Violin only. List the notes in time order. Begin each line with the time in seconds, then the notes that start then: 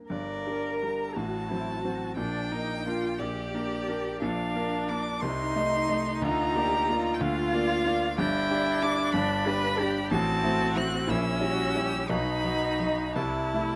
0.09 D5
0.79 A#5
1.15 A5
2.16 G5
3.20 D5
4.21 F5
4.89 D6
5.21 C6
6.21 A#5
7.14 G5
7.21 F5
8.19 G5
8.82 D6
9.12 B5
10.12 A5
10.77 F#6
11.10 E6
12.09 B5
13.15 A5